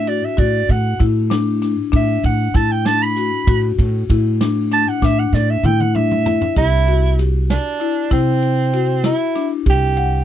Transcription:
0.00 0.20 A2 medium
0.07 0.32 F#4 medium
0.07 0.26 D5 medium
0.07 ride medium
0.25 0.40 E5 medium
0.37 0.63 A2 medium
0.37 0.87 F#4 medium
0.37 0.72 D5 medium
0.37 kick loud
0.37 ride medium
0.37 shaker medium
0.69 0.94 A2 medium
0.69 1.01 F#5 medium
0.69 kick medium
0.69 ride medium
0.69 shaker soft
1.00 1.75 A2 loud
1.00 1.24 E4 medium
1.00 kick medium
1.00 ride medium
1.00 shaker medium
1.30 1.55 D4 medium
1.30 snare loud
1.30 ride medium
1.62 1.87 D4 medium
1.62 snare soft
1.62 ride medium
1.62 shaker medium
1.92 2.18 A2 medium
1.92 2.42 D4 medium
1.92 2.23 E5 loud
1.92 kick loud
1.92 ride medium
1.92 shaker medium
2.24 2.49 A2 loud
2.24 2.57 F#5 medium
2.24 kick medium
2.24 ride medium
2.24 shaker soft
2.54 3.29 A2 medium
2.54 2.79 E4 medium
2.54 2.73 A5 medium
2.54 kick medium
2.54 snare soft
2.54 ride medium
2.54 shaker medium
2.71 2.87 G5 loud
2.85 3.10 D4 medium
2.85 3.04 A5 loud
2.85 snare loud
2.85 ride medium
3.02 3.64 B5 loud
3.17 3.41 F#4 medium
3.17 ride medium
3.17 shaker medium
3.47 3.72 A2 loud
3.47 3.97 F#4 medium
3.47 kick loud
3.47 ride medium
3.47 shaker medium
3.79 4.03 A2 loud
3.79 kick medium
3.79 ride medium
3.79 shaker soft
4.09 4.84 A2 loud
4.09 4.34 E4 medium
4.09 kick medium
4.09 ride medium
4.09 shaker medium
4.41 4.65 D4 medium
4.41 snare loud
4.41 ride medium
4.71 4.96 D4 medium
4.71 4.90 A5 loud
4.71 snare soft
4.71 ride medium
4.71 shaker medium
4.88 5.06 F#5 loud
5.02 5.27 A2 medium
5.02 5.52 D4 loud
5.02 5.20 E5 loud
5.02 kick loud
5.02 snare medium
5.02 shaker medium
5.19 5.35 F#5 medium
5.33 5.58 A2 medium
5.33 5.52 D5 medium
5.33 snare medium
5.50 5.67 E5 medium
5.63 6.38 A2 loud
5.63 5.89 E4 medium
5.63 5.82 G5 loud
5.63 mid tom medium
5.63 shaker medium
5.80 5.97 F#5 medium
5.80 mid tom medium
5.95 6.20 D4 medium
5.95 6.56 E5 medium
5.95 mid tom medium
6.11 mid tom medium
6.26 6.51 E4 medium
6.26 floor tom loud
6.26 shaker medium
6.41 floor tom medium
6.56 7.56 C2 medium
6.56 7.15 E4 loud
6.56 6.81 G4 medium
6.56 kick loud
6.56 ride medium
6.87 7.12 F#4 medium
6.87 ride medium
7.19 7.68 G4 medium
7.19 snare soft
7.19 ride medium
7.50 8.08 D4 medium
7.50 snare medium
7.50 ride medium
7.80 8.05 E4 medium
7.80 ride medium
8.11 9.11 C3 medium
8.11 9.01 C4 medium
8.11 8.61 E4 medium
8.11 kick loud
8.11 ride medium
8.42 ride medium
8.73 8.98 F#4 medium
8.73 ride medium
9.04 9.29 E4 medium
9.04 9.48 E4 loud
9.04 snare loud
9.04 ride medium
9.35 9.60 D4 medium
9.35 snare soft
9.35 ride medium
9.66 10.24 C2 medium
9.66 9.91 G4 medium
9.66 10.24 G4 loud
9.66 kick loud
9.66 ride medium
9.97 10.22 F#5 medium
9.97 ride medium

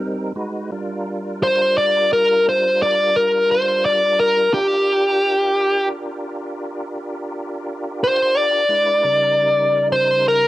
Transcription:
0.00 0.32 G3 medium
0.00 0.33 C4 medium
0.00 0.33 D#4 medium
0.00 0.32 A#4 medium
0.35 0.70 G#3 medium
0.35 0.70 D#4 medium
0.35 0.70 F#4 medium
0.35 0.71 B4 medium
0.72 4.50 G3 medium
0.72 4.50 D4 medium
0.72 4.50 F4 medium
0.72 4.50 A#4 medium
1.43 1.75 C5 medium
1.78 2.10 D5 medium
2.13 2.45 A#4 medium
2.49 2.80 C5 medium
2.82 3.15 D5 medium
3.16 3.49 A#4 medium
3.51 3.84 C5 medium
3.85 4.18 D5 medium
4.20 4.53 A#4 medium
4.52 8.65 D4 medium
4.52 8.65 F4 medium
4.52 8.65 G4 medium
4.52 5.88 G4 medium
4.52 8.65 A#4 medium
8.04 8.37 C5 medium
8.37 9.88 D5 medium
8.68 9.04 G#3 medium
8.68 9.04 D4 medium
8.68 9.03 E4 medium
8.68 9.04 B4 medium
9.04 10.48 C#3 medium
9.04 10.48 G3 medium
9.04 10.48 D#4 medium
9.04 10.48 A#4 medium
9.92 10.25 C5 medium
10.28 10.48 A#4 medium

